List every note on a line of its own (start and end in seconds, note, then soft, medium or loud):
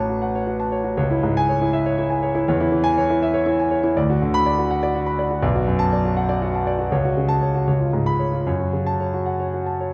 0.00 0.93 A1 medium
0.00 0.99 A2 medium
0.00 0.09 F#4 medium
0.00 0.35 C#5 medium
0.00 0.60 A5 medium
0.09 0.29 F#4 medium
0.22 0.42 F#5 medium
0.35 0.55 C#5 medium
0.47 0.67 F#4 medium
0.60 0.80 A5 medium
0.72 0.92 C#5 medium
0.84 0.97 F#4 medium
0.97 2.43 C#2 medium
0.97 1.18 C#5 medium
1.10 1.30 E4 medium
1.23 1.43 G#2 medium
1.37 1.56 G#5 loud
1.49 1.68 C#5 medium
1.61 1.81 E4 medium
1.73 1.93 E5 medium
1.86 2.05 C#5 medium
1.98 2.18 E4 medium
2.10 2.29 G#5 medium
2.23 2.42 C#5 medium
2.35 2.47 E4 medium
2.48 3.92 E2 medium
2.48 2.67 C#5 medium
2.60 2.80 E4 medium
2.72 2.92 E3 medium
2.84 3.04 G#5 loud
2.98 3.17 C#5 medium
3.10 3.30 E4 medium
3.23 3.42 E5 medium
3.34 3.53 C#5 medium
3.46 3.66 E4 medium
3.59 3.79 G#5 medium
3.71 3.91 C#5 medium
3.84 3.96 E4 medium
3.97 5.39 D2 medium
3.97 4.16 D5 medium
4.10 4.29 F#4 medium
4.22 4.41 D3 medium
4.34 4.53 B5 loud
4.46 4.65 D5 medium
4.58 4.78 F#4 medium
4.71 4.90 F#5 medium
4.83 5.02 D5 medium
4.95 5.14 F#4 medium
5.06 5.26 B5 medium
5.19 5.38 D5 medium
5.31 5.43 F#4 medium
5.42 6.88 B1 medium
5.42 5.62 D5 medium
5.55 5.75 F#4 medium
5.68 5.87 F#2 medium
5.79 5.99 A5 loud
5.93 6.12 D5 medium
6.05 6.25 F#4 medium
6.17 6.37 F#5 medium
6.29 6.49 D5 medium
6.42 6.62 F#4 medium
6.55 6.75 A5 medium
6.67 6.87 D5 medium
6.79 6.92 F#4 medium
6.92 7.65 C#2 medium
6.92 7.12 C#5 medium
7.05 7.25 F#4 medium
7.17 7.37 C#3 medium
7.29 7.49 A5 loud
7.42 7.62 C#5 medium
7.55 7.67 F#4 medium
7.67 8.44 C#2 medium
7.67 7.88 C#5 medium
7.79 8.00 F4 medium
7.93 8.14 G#2 medium
8.06 8.27 B5 medium
8.19 8.41 C#5 medium
8.33 8.46 F4 medium
8.47 9.93 F#2 medium
8.47 8.68 C#5 medium
8.59 8.81 F#4 medium
8.73 8.95 C#3 medium
8.86 9.08 A5 medium
9.00 9.22 C#5 medium
9.14 9.35 F#4 medium
9.26 9.48 F#5 medium
9.40 9.61 C#5 medium
9.53 9.75 F#4 medium
9.66 9.88 A5 medium
9.81 9.93 C#5 medium